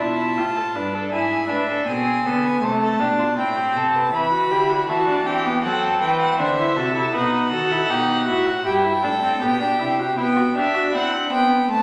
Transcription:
Already playing: F4 A5
0.00 B2 E4
0.37 A2 F4 G4
0.56 A4
0.75 G2 D4 B4
0.94 A4
1.12 G#2 E4 G#4 G#5
1.49 A2 D4 B4 E5
1.69 A4
1.87 B2 C4 G#4 G#5
2.26 D3 B3 A4
2.45 B4
2.63 C3 A3 C5 A5
2.82 A4
3.00 B2 D4 G4
3.19 F4
3.38 A2 C4 E4 G5
3.57 G4
3.75 C3 A4 A5
3.95 B4
4.13 E3 E4 B4 B5
4.33 F#4
4.51 D3 E4 G4
4.70 F#4
4.88 E3 E4 F#4 A5
5.08 D4
5.26 C4 G4 G5
5.45 B3
5.64 F#3 C4 A4 F#5
5.83 A5
6.01 E3 B4 G5
6.21 F#5
6.39 D3 D4 C5 E5
6.59 E4
6.76 C3 F#4 A4
6.96 E4
7.14 B2 D#4 B4 F#5
7.52 D#3 F#4 A4
7.72 E4
7.90 B2 D#4 G4
8.27 A2 E4 F#4
8.47 F#4
8.66 G2 E4 G4 G5
8.84 E4
9.03 A2 D4 A4
9.22 C4
9.41 B2 B3 G4
9.61 D4
9.79 C3 E4
9.99 F#4
10.17 B3 E4 G5
10.36 F#4
10.55 D4 G4 E5
10.74 F#4
10.94 C4 E4 F#5
11.12 D4
11.31 B3 C4 G5
11.50 B3
11.69 A3 C4 A5

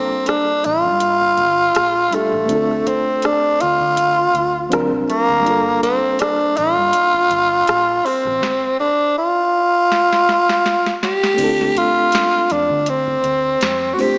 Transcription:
Already playing: G3 A#3 C4 D4 F4 A4
0.26 D4, cross-stick, closed hi-hat
0.64 A1 F4, closed hi-hat
0.84 G2, kick
1.00 closed hi-hat
1.21 kick
1.37 G1, kick, closed hi-hat
1.75 A#1, cross-stick, closed hi-hat
2.11 A#2 G3 A3 D4 F4, cross-stick, closed hi-hat
2.16 G4
2.33 A1, kick, cross-stick
2.45 A3 C4
2.49 D2 D4 F4, kick, closed hi-hat
2.55 A4
2.71 cross-stick
2.87 C4, kick, closed hi-hat
3.22 D4, cross-stick, closed hi-hat
3.60 D2 F4, closed hi-hat
3.80 D3, kick
3.97 kick, closed hi-hat
4.34 D2, kick, closed hi-hat
4.69 F3 C4 D4 F4, closed hi-hat
4.73 D2 F#3 A#4, cross-stick
4.92 C2, kick
5.09 A#3, cross-stick, closed hi-hat
5.29 D2, kick, cross-stick
5.40 G3 A#3
5.45 G1 D4 F4, kick, closed hi-hat
5.50 A4
5.69 cross-stick
5.83 C4, kick, closed hi-hat
6.19 D4, cross-stick, closed hi-hat
6.57 A1 F4, closed hi-hat
6.76 G2, kick
6.93 closed hi-hat
7.14 kick
7.30 G1, kick, closed hi-hat
7.67 A#1, cross-stick, closed hi-hat
8.06 C4, cross-stick, open hi-hat
8.25 A1, kick, cross-stick
8.42 kick, snare
8.80 D4
9.18 F4
9.92 snare
10.13 snare
10.29 snare
10.49 snare
10.66 snare
10.86 snare
11.03 G4, snare
11.24 snare
11.34 A3 C4, crash
11.38 D2 D4 E4, kick, closed hi-hat
11.44 A4
11.48 F4
11.61 snare
11.76 F4, kick, closed hi-hat
12.12 snare, closed hi-hat
12.50 F2 D4, closed hi-hat
12.69 D3, kick
12.86 C4, closed hi-hat
13.07 kick
13.23 D2, kick, closed hi-hat
13.61 F2, snare, closed hi-hat
13.94 A3 C4 F#4
13.99 D4 F4 G4 C5, snare, open hi-hat

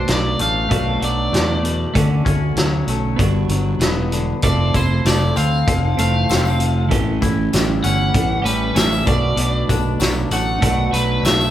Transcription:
Already playing: B2 A3 D4 F#4 C5
0.08 B1 F#3, snare, closed hi-hat
0.12 D5
0.39 A1 A3 F5, closed hi-hat
0.69 B1 B2 A3 D4 F#4, kick, closed hi-hat
1.00 B1 F#3 A3 D4 F#4, closed hi-hat
1.05 D5
1.32 E2 A3, snare, closed hi-hat
1.63 B2, closed hi-hat
1.94 D2 D3 A3 C#4 F#4, kick, closed hi-hat
2.25 D2 C#4, kick, closed hi-hat
2.56 D2 F#3, snare, closed hi-hat
2.87 B1 A3, closed hi-hat
3.16 G1 B3 D4 F#4, kick, closed hi-hat
3.21 G2
3.48 G1 F#3, closed hi-hat
3.79 E1 B3, snare, closed hi-hat
4.12 D3, closed hi-hat
4.42 F1 F3 A3 C4 D5, kick, closed hi-hat
4.74 F1 E4 C5, kick, closed hi-hat, tambourine
5.05 F1 A3 D5, snare, closed hi-hat, tambourine
5.36 D2 C4 F5, closed hi-hat, tambourine
5.52 tambourine
5.67 F1 F3, kick, closed hi-hat
5.97 F1 E3 A3 C4 F5, closed hi-hat, tambourine
6.29 F1 A3 C4, snare, closed hi-hat, tambourine
6.45 tambourine
6.59 F3, closed hi-hat
6.89 A1 A2 E3 A3 C#4 G4, kick, closed hi-hat
7.21 A1 E4, kick, closed hi-hat, tambourine
7.53 A1 G3, snare, closed hi-hat, tambourine
7.84 G1 C#4 F#5, closed hi-hat, tambourine
8.00 tambourine
8.14 A1 E3, kick, closed hi-hat
8.42 A1 E3 G3 A3 C#4 G4 B4, closed hi-hat, tambourine
8.74 A1 E3 A3 C#4 G4 E5, snare, closed hi-hat, tambourine
8.92 tambourine
9.05 B1 B2 A3 D4 F#4 D5, kick, closed hi-hat
9.37 B1 B2, closed hi-hat
9.69 B1 D4, kick, closed hi-hat, tambourine
10.00 B1 F#3, snare, closed hi-hat, tambourine
10.31 A1 A3 F#5, closed hi-hat, tambourine
10.48 tambourine
10.61 B1 B2 A3 D4 F#4, kick, closed hi-hat
10.91 B1 F#3 A3 D4 F#4 B4, closed hi-hat, tambourine
11.23 B1 A3 E5, snare, closed hi-hat, tambourine
11.41 tambourine

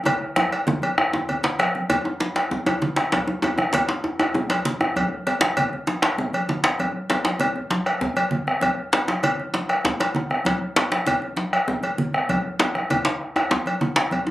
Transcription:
0.05 bombo low, cowbell, djembe slap, djembe tone, low conga, djembe bass
0.22 bombo rim
0.36 bombo rim, high conga, djembe tone
0.52 cowbell, djembe slap, high conga
0.67 bombo low, djembe slap, djembe tone, low conga, djembe bass
0.82 cowbell, high conga, djembe tone
0.98 bombo rim, djembe slap, djembe tone
1.13 bombo rim, djembe tone, low conga
1.29 bombo low, cowbell, low conga, djembe bass
1.43 bombo rim, djembe slap, low conga
1.59 bombo rim, cowbell, djembe slap, high conga
1.75 bombo rim, high conga, djembe tone
1.90 bombo low, cowbell, djembe tone, low conga, djembe bass
2.05 djembe tone
2.20 bombo rim, djembe slap, high conga
2.36 bombo rim, cowbell, djembe slap
2.51 djembe slap, high conga, djembe tone, djembe bass
2.66 cowbell, high conga, djembe tone
2.82 djembe tone, low conga
2.96 bombo rim, djembe slap, high conga, djembe tone
3.12 bombo low, cowbell, djembe slap, high conga, djembe bass
3.27 djembe tone
3.42 bombo rim, cowbell, djembe slap, djembe tone
3.58 bombo rim, djembe slap, djembe tone, high conga
3.73 bombo low, cowbell, djembe slap, low conga, djembe bass
3.89 djembe slap, djembe tone
4.04 bombo rim, djembe tone
4.19 bombo rim, cowbell, djembe tone
4.34 bombo low, djembe slap, high conga, djembe tone, djembe bass
4.50 cowbell, djembe slap, high conga
4.65 djembe slap, low conga
4.81 bombo rim, djembe tone, high conga
4.96 bombo low, cowbell, high conga, djembe bass
5.27 bombo rim, cowbell, djembe slap, djembe tone
5.41 bombo rim, djembe slap
5.42 djembe slap, high conga
5.57 bombo low, cowbell, low conga, djembe bass
5.73 djembe tone
5.87 bombo rim, djembe slap, high conga
6.02 bombo rim, cowbell, djembe slap
6.18 bombo low, djembe slap, high conga, djembe tone, djembe bass
6.33 cowbell, high conga
6.49 djembe slap, low conga
6.64 bombo rim, djembe slap, high conga, djembe tone
6.79 bombo low, cowbell, high conga, djembe bass
7.10 bombo rim, cowbell, djembe slap, djembe tone
7.25 bombo rim, djembe slap, high conga
7.40 bombo low, cowbell, low conga, djembe bass
7.56 djembe slap, djembe tone
7.70 djembe slap, high conga
7.86 bombo rim, cowbell, djembe slap, high conga
8.01 bombo rim, bombo low, djembe slap, djembe tone, djembe bass
8.16 cowbell, high conga
8.31 bombo rim, low conga
8.47 bombo rim, djembe tone
8.61 bombo rim, bombo low, cowbell, high conga, djembe bass
8.78 djembe slap
8.93 bombo rim, cowbell, djembe slap, djembe tone
9.08 bombo rim, djembe slap, high conga
9.23 bombo low, cowbell, djembe tone, low conga, djembe bass
9.40 djembe tone
9.54 bombo rim, djembe slap, high conga
9.69 bombo rim, cowbell
9.85 bombo low, djembe slap, djembe tone, high conga, djembe bass
10.00 cowbell, djembe slap, high conga
10.15 djembe tone, low conga
10.30 bombo rim, djembe tone
10.45 bombo low, cowbell, djembe slap, high conga, djembe bass
10.76 bombo rim, cowbell, djembe slap, djembe tone
10.91 bombo rim, djembe slap, high conga
11.06 bombo low, cowbell, djembe tone, low conga, djembe bass
11.22 djembe tone
11.37 bombo rim, djembe slap, high conga
11.53 bombo rim, cowbell
11.68 bombo low, djembe slap, high conga, djembe tone, djembe bass
11.83 cowbell, high conga
11.98 low conga
12.13 bombo rim, high conga, djembe tone
12.29 bombo low, cowbell, high conga, djembe bass
12.60 bombo rim, cowbell, djembe slap, djembe tone
12.75 bombo rim, djembe slap, high conga
12.90 bombo low, cowbell, djembe tone, low conga, djembe bass
13.05 djembe slap
13.21 bombo rim
13.36 bombo rim, cowbell, djembe tone
13.51 djembe slap, djembe tone, high conga, djembe bass
13.66 cowbell, high conga
13.81 djembe tone, low conga
13.96 bombo rim, djembe slap, high conga, djembe tone
14.11 bombo low, cowbell, high conga, djembe bass
14.27 djembe tone

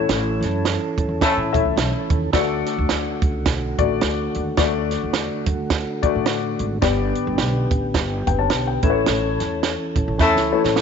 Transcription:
Already playing: E3 A3 C#4 E4 A4 C#5
0.09 A1, snare, closed hi-hat
0.41 F#2, snare, closed hi-hat
0.65 snare, closed hi-hat
0.98 E2, kick, closed hi-hat
1.09 E2
1.21 A3 C#4 E4 A4, kick, snare, closed hi-hat
1.37 A2
1.53 A1 A3 E4 E5, kick, closed hi-hat
1.65 C#2
1.76 B1, snare, closed hi-hat
2.10 D#2, kick, closed hi-hat
2.33 D2 D3 A3 F#4 D5, kick, snare, closed hi-hat
2.66 snare, closed hi-hat
2.78 D2
2.89 D2, snare, closed hi-hat
3.22 C#2, kick, closed hi-hat
3.46 B1, kick, snare, closed hi-hat
3.78 A1 A3 F#4 D5, kick, closed hi-hat
4.01 D2, snare, closed hi-hat
4.35 D#2, closed hi-hat
4.57 D2 A3 F#4 D5, kick, snare, closed hi-hat
4.91 snare, closed hi-hat
5.04 E2
5.13 snare, closed hi-hat
5.46 F#2, kick, closed hi-hat
5.60 D2
5.70 kick, snare, closed hi-hat
6.03 D2 A3 F#4 D5, kick, closed hi-hat
6.16 A2
6.26 snare, closed hi-hat
6.59 G#1, closed hi-hat
6.82 G1 B3 G4 D5, kick, snare, closed hi-hat
7.15 closed hi-hat
7.27 G1
7.38 B1, snare, closed hi-hat
7.71 A1, kick, closed hi-hat
7.94 G1, kick, snare, closed hi-hat
8.27 F#1 B4 G5, kick, closed hi-hat
8.39 C#5 A5
8.50 B1, snare, closed hi-hat
8.67 B4 G5
8.83 A1 E3 A3 C#4 E4 A4 B4, kick, closed hi-hat
8.90 C#5
9.06 A1, snare, closed hi-hat
9.40 E2, snare, closed hi-hat
9.63 snare, closed hi-hat
9.96 A1, kick, closed hi-hat
10.08 A1
10.19 E2 A3 C#4 E4 A4, kick, snare
10.36 C#2, snare
10.52 A3 E4 C#5
10.64 A1, snare
10.76 snare

